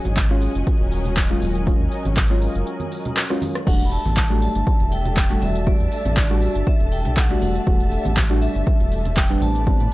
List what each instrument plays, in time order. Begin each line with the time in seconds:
Already playing: analog synth pad F#3 C#4 G#4 D#5, string section F#3 C#4 G#5, string machine F#4 F#6
0.05 analog synth bass G#1, closed hi-hat, high conga, shaker
0.16 kick, clap, closed hi-hat, low conga, shaker
0.30 synth stab F#3 G#3 C#4 F4
0.42 open hi-hat, shaker
0.55 analog synth bass F#1, closed hi-hat, shaker
0.67 analog synth pad A#4, kick, closed hi-hat, shaker
0.80 analog synth bass D#1, high conga
0.92 open hi-hat, shaker
1.05 closed hi-hat, low conga, shaker
1.17 kick, clap, closed hi-hat, shaker
1.30 synth stab F#3 G#3 C#4 F4
1.42 analog synth bass D#1, open hi-hat, high conga, shaker
1.55 closed hi-hat, shaker
1.67 synth stab F#3 G#3 C#4 F4, kick, closed hi-hat, shaker
1.80 analog synth bass D#2
1.92 open hi-hat, shaker
2.05 analog synth bass G#1, closed hi-hat, high conga, shaker
2.17 kick, clap, closed hi-hat, low conga, shaker
2.30 synth stab F#3 G#3 C#4 F4
2.42 open hi-hat, shaker
2.55 analog synth bass F#1, closed hi-hat, shaker
2.67 closed hi-hat, shaker
2.80 closed hi-hat, high conga
2.92 open hi-hat, shaker
3.05 closed hi-hat, low conga, shaker
3.17 cross-stick, clap, closed hi-hat, shaker
3.30 synth stab F#3 G#3 C#4 F4, cross-stick
3.42 open hi-hat, high conga, shaker
3.55 cross-stick, closed hi-hat, shaker
3.67 analog synth bass E1, synth stab G3 A3 D4 F#4, analog synth pad A3 D4 A4 E5, string section D4, vibraphone F#5, kick, crash, shaker
3.73 string section G3
3.80 string section A5, closed hi-hat
3.85 vibraphone B5
3.92 vibraphone A5, open hi-hat, shaker
4.05 analog synth bass A1, closed hi-hat, high conga, shaker
4.17 kick, clap, low conga, shaker
4.21 string section E5
4.30 synth stab F#3 G3 A3 D4
4.42 vibraphone A5, open hi-hat, shaker
4.55 analog synth bass G1, closed hi-hat, shaker
4.67 kick, shaker
4.80 analog synth bass E1, closed hi-hat, high conga
4.92 vibraphone G5, open hi-hat, shaker
5.05 closed hi-hat, low conga, shaker
5.17 kick, clap, shaker
5.30 synth stab G3 A3 D4 F#4, closed hi-hat
5.42 analog synth bass E1, vibraphone E5, open hi-hat, high conga, shaker
5.55 closed hi-hat, shaker
5.67 synth stab G3 A3 D4 F#4, vibraphone D5, kick, shaker
5.80 analog synth bass E2, closed hi-hat
5.92 open hi-hat, shaker
6.05 analog synth bass A1, closed hi-hat, high conga, shaker
6.16 vibraphone D5, kick, clap, low conga, shaker
6.30 synth stab G3 A3 D4 F#4
6.42 open hi-hat, shaker
6.55 analog synth bass G1, closed hi-hat, shaker
6.67 vibraphone E5, kick, shaker
6.75 string section E5
6.80 analog synth bass E1, closed hi-hat, high conga
6.92 vibraphone G5, open hi-hat, shaker
7.05 analog synth bass B1, closed hi-hat, low conga, shaker
7.17 vibraphone F#5, kick, clap, shaker
7.30 synth stab G3 A3 D4 F#4, closed hi-hat
7.42 analog synth bass E1, vibraphone F#5, open hi-hat, high conga, shaker
7.55 closed hi-hat, shaker
7.67 analog synth bass E1, synth stab G3 A3 D4 F#4, kick, shaker
7.80 closed hi-hat
7.92 open hi-hat, shaker
8.05 analog synth bass A1, closed hi-hat, high conga, shaker
8.17 kick, clap, low conga, shaker
8.30 synth stab G3 A3 D4 F#4
8.42 vibraphone E5, open hi-hat, shaker
8.55 analog synth bass G1, closed hi-hat, shaker
8.67 kick, shaker
8.80 analog synth bass E1, closed hi-hat, high conga
8.92 open hi-hat, shaker
9.05 closed hi-hat, low conga, shaker
9.17 vibraphone G5, kick, clap, shaker
9.30 synth stab G3 B3 C4 D4, closed hi-hat
9.41 analog synth bass A1, analog synth pad B4 D5, vibraphone A5, open hi-hat, high conga, shaker
9.55 string section D5 B5, closed hi-hat, shaker
9.67 synth stab G3 B3 C4 D4, kick, shaker
9.80 analog synth bass A2, closed hi-hat